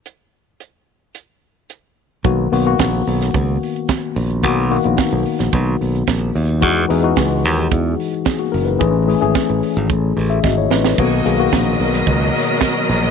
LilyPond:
<<
  \new Staff \with { instrumentName = "String section" } { \time 4/4 \key b \major \tempo 4 = 110 r1 | r1 | r1 | r1 |
r1 | <b, fis ais' dis''>1 | }
  \new Staff \with { instrumentName = "Tine electric piano" } { \time 4/4 \key b \major r1 | r1 | r1 | r2. <b gis'>16 <ais fis'>16 <cis' ais'>16 <dis' b'>16~ |
<dis' b'>16 r2 r8 <gis' e''>16 <fis' dis''>16 <e' cis''>16 <dis' b'>16 <cis' a'>16~ | <cis' a'>16 r2. r8. | }
  \new Staff \with { instrumentName = "Tine electric piano" } { \time 4/4 \key b \major r1 | <dis ais b fis'>8 <dis ais b fis'>16 <dis ais b fis'>4. r4. r16 | <dis ais b fis'>8 <dis ais b fis'>16 <dis ais b dis'>4. r4. r16 | <e gis dis' fis'>8 <e gis dis' gis'>16 <e gis dis' fis'>4. r4. r16 |
<e a cis' gis'>8 <e a cis' gis'>16 <e a cis' gis'>4. r4. r16 | <dis ais b fis'>8 <dis ais b gis'>16 <dis ais b fis'>4. r4. r16 | }
  \new Staff \with { instrumentName = "Fingered electric bass" } { \clef bass \time 4/4 \key b \major r1 | b,,8 b,,8 ais,,8 b,,8 cis,8 r4 ais,,8 | b,,8. ais,,16 r16 b,,16 r16 ais,,16 b,,8 b,,8 ais,,8 dis,8 | e,8 e,8 cis,8 dis,8 e,8 r4 fis,,8 |
a,,8. gis,,16 r16 a,,16 r16 gis,,16 a,,8 a,,8 gis,,8 a,,8 | b,,8 b,,8 ais,,8 b,,8 cis,8 r4 ais,,8 | }
  \new DrumStaff \with { instrumentName = "Drums" } \drummode { \time 4/4 hh4 hh4 hh4 hh4 | <hh bd>8 hho16 hh16 <hh bd sn>8 hho16 <hh sn>16 <hh bd>8 hho16 hh16 <hh bd sn>8 hho16 hh16 | <hh bd>8 hho16 hh16 <hh bd sn>8 hho16 <hh sn>16 <hh bd>8 hho16 hh16 <hh bd sn>8 hho16 hh16 | <hh bd>8 hho16 hh16 <hh bd sn>8 hho16 hh16 <hh bd>8 hho16 hh16 <hh bd sn>8 hho16 hh16 |
<hh bd>8 hho16 hh16 <hh bd sn>8 hho16 hh16 <hh bd>8 hho16 hh16 <bd sn>8 sn16 sn16 | <cymc bd>8 hho16 hh16 <hh bd sn>8 hho16 <hh sn>16 <hh bd>8 hho16 hh16 <hh bd sn>8 hho16 hh16 | }
>>